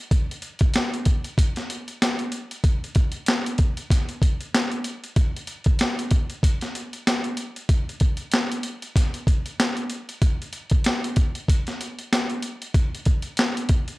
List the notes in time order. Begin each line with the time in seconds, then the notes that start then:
0.11 kick, closed hi-hat
0.31 closed hi-hat
0.42 closed hi-hat
0.59 kick, closed hi-hat
0.74 snare, closed hi-hat
0.94 closed hi-hat
1.05 kick, closed hi-hat
1.24 closed hi-hat
1.38 kick, closed hi-hat
1.56 snare, closed hi-hat
1.70 closed hi-hat
1.88 closed hi-hat
2.02 snare, closed hi-hat
2.19 closed hi-hat
2.32 closed hi-hat
2.51 closed hi-hat
2.64 kick, closed hi-hat
2.84 closed hi-hat
2.95 kick, closed hi-hat
3.12 closed hi-hat
3.26 snare, closed hi-hat
3.46 closed hi-hat
3.58 kick, closed hi-hat
3.77 closed hi-hat
3.90 kick, snare, closed hi-hat
4.09 closed hi-hat
4.22 kick, closed hi-hat
4.41 closed hi-hat
4.54 snare, closed hi-hat
4.71 closed hi-hat
4.84 closed hi-hat
5.04 closed hi-hat
5.16 kick, closed hi-hat
5.36 closed hi-hat
5.47 closed hi-hat
5.64 kick, closed hi-hat
5.79 snare, closed hi-hat
5.99 closed hi-hat
6.11 kick, closed hi-hat
6.30 closed hi-hat
6.43 kick, closed hi-hat
6.61 snare, closed hi-hat
6.75 closed hi-hat
6.93 closed hi-hat
7.07 snare, closed hi-hat
7.24 closed hi-hat
7.37 closed hi-hat
7.56 closed hi-hat
7.69 kick, closed hi-hat
7.89 closed hi-hat
8.00 kick, closed hi-hat
8.17 closed hi-hat
8.32 snare, closed hi-hat
8.52 closed hi-hat
8.63 closed hi-hat
8.82 closed hi-hat
8.96 kick, snare, closed hi-hat
9.14 closed hi-hat
9.27 kick, closed hi-hat
9.46 closed hi-hat
9.60 snare, closed hi-hat
9.77 closed hi-hat
9.90 closed hi-hat
10.09 closed hi-hat
10.22 kick, closed hi-hat
10.42 closed hi-hat
10.53 closed hi-hat
10.70 kick, closed hi-hat
10.84 snare, closed hi-hat
11.04 closed hi-hat
11.16 kick, closed hi-hat
11.35 closed hi-hat
11.48 kick, closed hi-hat
11.67 snare, closed hi-hat
11.81 closed hi-hat
11.99 closed hi-hat
12.13 snare, closed hi-hat
12.30 closed hi-hat
12.42 closed hi-hat
12.62 closed hi-hat
12.74 kick, closed hi-hat
12.95 closed hi-hat
13.05 kick, closed hi-hat
13.22 closed hi-hat
13.37 snare, closed hi-hat
13.57 closed hi-hat
13.69 kick, closed hi-hat
13.88 closed hi-hat